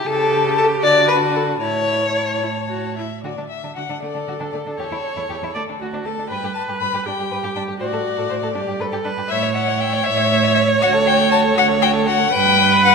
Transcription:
0.07 C#3 G4 A4 A5
0.57 A4
0.83 D3 F#4 D5 A5
1.08 B4
1.35 A4
1.61 A2 E4 C#5 A5
2.43 E4
2.70 F#4
2.97 E4 E5
3.24 D3 F#4 D5
3.38 D3 D4
3.50 E5
3.64 D3 D4
3.76 D3 F#4 F#5
3.89 D3 D4
4.02 D3 A3 A4 D5
4.15 D3 D4
4.28 D3 F#4
4.40 D3 D4
4.52 D3 A3 D5
4.66 D3 D4
4.78 E2 G4 A4 C#5
4.91 E2 E4
5.17 E2 E4
5.29 E2 G4
5.43 E2 E4
5.55 D2 A3 D5
5.68 D2 D4
5.80 D2 F#4
5.93 D2 D4
6.05 D2 A3 A4 A5
6.18 D2 D4
6.30 G2 B4 G5
6.43 G2 G4
6.55 A5
6.68 G2 G4
6.80 G2 B4 B5
6.93 G2 G4
7.06 G2 D4 G4 G5
7.18 G2 G4
7.31 G2 B4
7.43 G2 G4
7.55 G2 D4 G5
7.68 G2 G4
7.80 A2 F#4 C5 D5
7.93 A2 A4
8.17 A2 A4
8.30 A2 C5
8.42 A2 A4
8.54 G2 D4 G4
8.67 G2 G4
8.79 G2 A4 B4
8.92 G2 G4
9.05 G2 D4 B4
9.17 G2 G4
9.29 A2 C#5 E5
9.43 C#5
9.55 E5 F#5
9.68 C#5
9.80 E5 G5
9.93 C#5
10.04 A2 E5
10.17 C#5
10.30 E5
10.44 C#5
10.55 E5
10.68 C#5
10.81 D2 F#4 F#5
10.93 A4
11.06 F#4 G5
11.19 A4
11.30 F#4 A5
11.43 A4
11.56 D2 F#4 F#5
11.68 A4
11.80 F#4 G5
11.93 A4
12.06 F#4 F#5
12.19 A4
12.32 G2 B4 G5
12.85 F#5

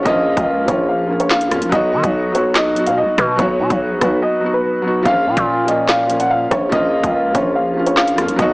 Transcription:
Already playing: F3 A#3 C#4 F4
0.03 A#1 F3 A#3 C#4 D#5, kick, closed hi-hat
0.08 F4
0.37 C#2, kick, closed hi-hat
0.65 A#1 F3 A#3 C#4 C#5, kick, closed hi-hat
0.71 F4
0.89 F5
1.07 F3 A#3 C#4
1.12 F4
1.20 C#5, closed hi-hat
1.30 F5, snare, clap
1.41 closed hi-hat
1.49 F2 F3 A#3 C#4, cross-stick, closed hi-hat
1.54 F4
1.62 A#1, closed hi-hat
1.69 B1 F#3 B3 D#4 D#5, kick, closed hi-hat
1.75 F#4
1.93 D#3
2.04 B1, kick, closed hi-hat
2.32 F#3 B3 D#4 C#5, closed hi-hat
2.38 F#4
2.55 D#5, snare, clap, closed hi-hat
2.74 F#3 B3 D#4, closed hi-hat
2.79 F#4
2.87 B2 F5, closed hi-hat
2.97 D#5
3.02 B1
3.18 B2 B4, kick, cross-stick, closed hi-hat
3.36 B1 F#3 B3 D#4 C#5, kick, closed hi-hat
3.42 F#4
3.60 B2
3.70 B1, kick, closed hi-hat
3.91 A#1
3.99 B1 F#3 B3 D#4 B4, kick, cross-stick, closed hi-hat
4.04 F#4
4.22 D#5
4.40 F#3 B3 D#4
4.46 F#4
4.54 B4
4.82 F#3 B3 D#4
4.88 F#4
5.03 A#1 F3 A#3 C#4 F5, kick, closed hi-hat
5.08 F4
5.26 A#2
5.37 A#2, kick, closed hi-hat
5.65 F3 A#3 C#4 D#5, closed hi-hat
5.71 F4
5.88 F5, snare, clap, closed hi-hat
6.07 F3 A#3 C#4, closed hi-hat
6.12 F4
6.20 F#5, closed hi-hat
6.30 F5
6.51 A#1 C#5, kick, cross-stick, closed hi-hat
6.69 A#1 F3 A#3 C#4 D#5, kick, closed hi-hat
6.75 F4
7.03 C#2, kick, closed hi-hat
7.32 A#1 F3 A#3 C#4 C#5, kick, closed hi-hat
7.37 F4
7.55 F5
7.74 F3 A#3 C#4
7.79 F4
7.87 C#5, closed hi-hat
7.97 F5, snare, clap
8.08 closed hi-hat
8.15 F2 F3 A#3 C#4, cross-stick, closed hi-hat
8.21 F4
8.28 A#1, closed hi-hat
8.36 B1 F#3 B3 D#4 D#5, kick, closed hi-hat
8.42 F#4

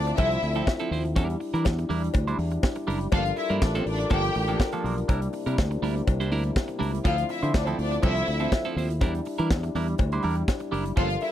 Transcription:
Already playing: D2 D3 F3 A3 C4 D4 E4 D5
0.07 muted clean electric guitar stroke, closed hi-hat
0.17 C2 F3 C4 E4 A4 E5, kick, closed hi-hat, cowbell
0.31 muted clean electric guitar stroke, closed hi-hat
0.42 D2, muted clean electric guitar stroke, open hi-hat
0.55 F3 C4 E4 A4, closed hi-hat
0.67 muted clean electric guitar stroke, kick, snare, cowbell
0.79 F3 C4 E4 A4, closed hi-hat
0.91 D#2 F3 C4 E4 C5, open hi-hat
1.05 muted clean electric guitar stroke, closed hi-hat
1.16 E2 G3 D4 E4 A#4, kick, closed hi-hat, cowbell
1.29 muted clean electric guitar stroke, closed hi-hat
1.40 muted clean electric guitar stroke, open hi-hat
1.54 E3 G3 D4 E4 A#4, closed hi-hat
1.65 E2, kick, snare, cowbell
1.78 muted clean electric guitar stroke, closed hi-hat
1.89 E2 G3 D4 E4 A#4, open hi-hat
2.03 muted clean electric guitar stroke, closed hi-hat
2.14 D2, muted clean electric guitar stroke, kick, closed hi-hat, cowbell
2.27 G3 D4 E4 C5, closed hi-hat
2.38 E2, muted clean electric guitar stroke, open hi-hat
2.51 muted clean electric guitar stroke, closed hi-hat
2.63 kick, snare, cowbell
2.75 muted clean electric guitar stroke, closed hi-hat
2.87 F#1 G3 D4 E4 A#4, open hi-hat
3.00 muted clean electric guitar stroke, closed hi-hat
3.12 G1 F3 A#3 D4 F4 A4 A#4 F5, kick, closed hi-hat, cowbell
3.25 muted clean electric guitar stroke, closed hi-hat
3.36 E4 E5, muted clean electric guitar stroke, open hi-hat
3.50 G2 F3 A#3 D4 A#4, closed hi-hat
3.62 A1 D4 D5, muted clean electric guitar stroke, kick, snare, cowbell
3.75 F3 A#3 C4 D4 A4 C5, closed hi-hat
3.86 A1 D4 D5, open hi-hat
3.99 muted clean electric guitar stroke, closed hi-hat
4.10 G1 F3 A#3 D4 G4 A4 G5, kick, closed hi-hat, cowbell
4.24 muted clean electric guitar stroke, closed hi-hat
4.35 A1, muted clean electric guitar stroke, open hi-hat
4.47 F3 A#3 D4 A4, closed hi-hat
4.59 muted clean electric guitar stroke, kick, snare, cowbell
4.72 F3 A#3 D4 A4, closed hi-hat
4.84 B1 F3 A#3 D4 A#4, open hi-hat
4.97 muted clean electric guitar stroke, closed hi-hat
5.08 C2 C3 G3 A#3 D4 E4 A#4, kick, closed hi-hat, cowbell
5.21 muted clean electric guitar stroke, closed hi-hat
5.33 muted clean electric guitar stroke, open hi-hat
5.46 C3 G3 D4 E4 A#4, closed hi-hat
5.58 D2, kick, snare, cowbell
5.71 muted clean electric guitar stroke, closed hi-hat
5.82 D2 G3 D4 E4 A#4, open hi-hat
5.96 muted clean electric guitar stroke, closed hi-hat
6.07 C2, muted clean electric guitar stroke, kick, closed hi-hat, cowbell
6.20 G3 D4 E4 C5, closed hi-hat
6.32 D2 G3 D4 E4 A#4, open hi-hat
6.44 muted clean electric guitar stroke, closed hi-hat
6.56 kick, snare, cowbell
6.68 muted clean electric guitar stroke, closed hi-hat
6.79 C#2 G3 D4 E4 A#4, open hi-hat
6.93 muted clean electric guitar stroke, closed hi-hat
7.04 D2 D3 F3 A3 C4 E4 F4 A4 F5, kick, closed hi-hat, cowbell
7.18 muted clean electric guitar stroke, closed hi-hat
7.29 E4 E5, muted clean electric guitar stroke, open hi-hat
7.43 D3 F3 C4 E4 C5, closed hi-hat
7.54 D2 D4 D5, muted clean electric guitar stroke, kick, snare, cowbell
7.67 F3 C4 E4 A4 C5, closed hi-hat
7.79 D2 D4 D5, muted clean electric guitar stroke, open hi-hat
7.91 muted clean electric guitar stroke, closed hi-hat
8.03 C2 F3 C4 E4 A4 E5, kick, closed hi-hat, cowbell
8.16 muted clean electric guitar stroke, closed hi-hat
8.27 D2, muted clean electric guitar stroke, open hi-hat
8.39 F3 C4 E4 A4, closed hi-hat
8.52 muted clean electric guitar stroke, kick, snare, cowbell
8.64 F3 C4 E4 A4, closed hi-hat
8.76 D#2 F3 C4 E4 C5, open hi-hat
8.90 muted clean electric guitar stroke, closed hi-hat
9.01 E2 G3 D4 E4 A#4, kick, closed hi-hat, cowbell
9.15 muted clean electric guitar stroke, closed hi-hat
9.25 muted clean electric guitar stroke, open hi-hat
9.38 E3 G3 D4 E4 A#4, closed hi-hat
9.50 E2, muted clean electric guitar stroke, kick, snare, cowbell
9.63 muted clean electric guitar stroke, closed hi-hat
9.75 E2 G3 D4 E4 A#4, open hi-hat
9.88 muted clean electric guitar stroke, closed hi-hat
9.98 D2, muted clean electric guitar stroke, kick, closed hi-hat, cowbell
10.12 G3 D4 E4 C5, closed hi-hat
10.23 E2 G3 D4 E4 A#4, open hi-hat
10.35 muted clean electric guitar stroke, closed hi-hat
10.48 muted clean electric guitar stroke, kick, snare, cowbell
10.60 muted clean electric guitar stroke, closed hi-hat
10.72 F#1 G3 D4 E4 A#4, open hi-hat
10.85 muted clean electric guitar stroke, closed hi-hat
10.96 G1 F3 A#3 D4 F4 A4 A#4 F5, kick, closed hi-hat, cowbell
11.10 muted clean electric guitar stroke, closed hi-hat
11.21 E4 E5, muted clean electric guitar stroke, open hi-hat

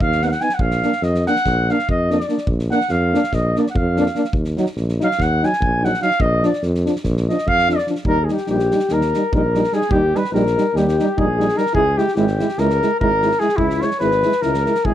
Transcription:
0.00 D#2 F5, kick
0.12 snare
0.22 B3 D#4 F#5, snare
0.28 F5
0.32 F#5, snare
0.40 B3 D#4 G#5, snare
0.49 snare
0.54 F#5
0.59 A#1 F5, kick
0.71 snare
0.83 A#3 D4, snare
0.92 snare
1.02 F2 D#5, snare
1.15 snare
1.26 A#3 D4 F#5, snare
1.36 snare
1.45 A#1, kick, snare
1.69 A#3 D4 F5, snare
1.79 snare
1.89 F2 D#5, kick
2.10 A#3 D4 D5, snare
2.21 snare
2.29 A#3 D4, snare
2.38 snare
2.47 A#1, kick
2.59 snare
2.71 A#3 D4 F#5, snare
2.81 snare
2.89 F2 F5, snare
3.13 A#3 D4, snare
3.24 snare
3.32 A#1 D#5, kick, snare
3.56 A#3 D4 D5, snare
3.67 F#5, snare
3.75 F2 F5, kick
3.97 A#3 D4, snare
4.06 snare
4.15 A#3 D4, snare
4.24 snare
4.33 D#2, kick
4.44 snare
4.57 F#3 D#4, snare
4.66 snare
4.76 A#1, snare
4.89 snare
5.00 F#3 D#4 F5, snare
5.11 snare
5.18 D#2 F#5, kick, snare
5.43 F#3 D#4 G#5, snare
5.53 snare
5.61 A#1, kick
5.83 F#3 D#4 F#5, snare
5.94 snare
6.02 F#3 D#4 F5, snare
6.11 snare
6.20 A#1 D#5, kick
6.43 F3 D4 D5, snare
6.53 snare
6.63 F2, snare
6.75 snare
6.86 F3 D4, snare
6.96 snare
7.04 A#1, kick, snare
7.17 snare
7.28 F3 D4 D#5, snare
7.38 snare
7.46 F2 F5, kick
7.59 snare
7.68 F3 D4 D5, snare
7.79 snare
7.87 F3 D4, snare
7.96 snare
8.05 D#2 G3 D#4 A#4, kick
8.23 G#4
8.29 G3 D#4 G4, snare
8.37 snare
8.47 A#1 G3 D#4 G4, snare
8.59 snare
8.71 G3 D#4, snare
8.79 snare
8.89 D#2 G3 D#4 A#4, snare
8.93 A#4
9.01 snare
9.14 G3 D#4, snare
9.32 A#1 G3 D#4 A#4, kick
9.37 A#4
9.55 G3 D#4, snare
9.64 snare
9.72 G3 D#4 G#4, snare
9.81 snare
9.89 D#2 G3 D#4 G4, kick
10.14 G3 D#4 B4, snare
10.24 snare
10.32 A#1 G3 D#4 A#4, snare
10.47 snare
10.57 G3 D#4, snare
10.74 D#2 G3 D#4 G4, snare
10.78 G4
10.88 snare
10.98 G3 D#4, snare
11.17 A#1 G3 D#4 G#4, kick
11.38 G3 D#4, snare
11.49 snare
11.55 G3 D#4 A#4, snare
11.60 A#4
11.66 snare
11.73 C#2 G#3 E4 G#4, kick
11.97 G#3 E4 G4, snare
12.08 snare
12.16 G#1 G#3 E4 G4, snare
12.27 snare
12.40 G#3 E4, snare
12.49 snare
12.58 C#2 G#3 E4 A#4, snare
12.70 snare
12.81 G#3 E4, snare
13.00 G#1 G#3 E4 A#4, kick
13.22 G#3 E4, snare
13.31 snare
13.39 G#3 E4 G#4, snare
13.49 snare
13.56 C#2 G#3 E4, kick
13.62 E4
13.70 snare
13.81 G#3 E4 C#5, snare
13.91 snare
13.99 G#1 G#3 E4 B4, snare
14.11 snare
14.23 G#3 E4, snare
14.32 snare
14.41 C#2 G#3 E4 A#4, snare
14.54 snare
14.66 G#3 E4, snare
14.75 snare
14.85 G#1 G#3 E4 G#4, kick

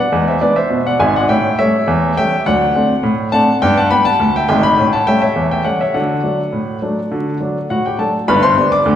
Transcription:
Already playing: F#5
0.00 D5
0.12 E2 G#3
0.28 C5 E5
0.41 G#3 B3 D4 B4 D5
0.56 C5 E5
0.70 B2
0.86 D5 F#5
1.00 G#1 G#2 E5 G#5
1.16 D5 F#5
1.29 A2 C#4 E5 G5
1.59 G3 A3 C#4 C#5 E5
1.87 E2
2.17 G3 A3 C#4 E5 G5
2.46 D2 F#3 D5 F#5
2.75 A3 C4 D4
3.03 A2
3.32 A3 C4 D4 F#5 A5
3.62 G2 B3 D5 G5
3.78 F#5 A5
3.91 G3 B3 D4 G5 B5
4.05 F#5 A5
4.20 D2
4.36 E5 G5
4.49 G#1 G#2 E5 G5
4.63 G5 B5
4.78 A2 C#4
4.93 F#5 A5
5.07 G3 A3 C#4 E5 G5
5.22 C#5 E5
5.36 E2
5.51 E5 G5
5.65 G3 A3 C#4 D5 F#5
5.81 C#5 E5
5.94 D3 F#4 D5 F#5
6.23 F#3 A3 D4
6.53 A2
6.82 F#3 A3 D4
7.11 D3 F#4
7.41 F#3 A3 D4
7.70 A2 F#4 F#5
7.86 G4 G5
7.99 F#3 A3 D4 A4 A5
8.28 G1 G2 B4 B5
8.43 C5 C6
8.57 G3 B3 D4
8.72 D5 D6
8.86 D2 D3

